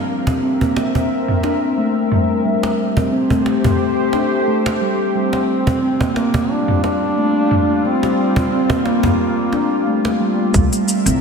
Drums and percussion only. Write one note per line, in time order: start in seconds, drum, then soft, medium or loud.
0.27 cajon bass medium
0.61 cajon bass medium
0.76 cajon slap medium
0.95 cajon bass medium
1.28 mid tom medium
1.43 cajon slap medium
2.12 mid tom medium
2.63 cajon slap medium
2.97 cajon bass medium
3.30 cajon bass medium
3.46 cajon slap medium
3.64 cajon bass medium
3.64 mid tom medium
4.13 cajon slap medium
4.66 cajon slap medium
5.33 cajon slap medium
5.67 cajon bass medium
6.01 cajon bass medium
6.16 cajon slap medium
6.34 cajon bass medium
6.68 mid tom medium
6.84 cajon slap medium
7.51 mid tom medium
8.03 cajon slap medium
8.36 cajon bass medium
8.70 cajon bass medium
8.85 cajon slap medium
9.03 cajon bass medium
9.03 mid tom medium
9.53 cajon slap medium
10.05 cajon slap medium
10.54 kick loud
10.54 shaker soft
10.73 open hi-hat soft
10.73 shaker soft
10.88 shaker medium
11.06 open hi-hat medium
11.06 shaker soft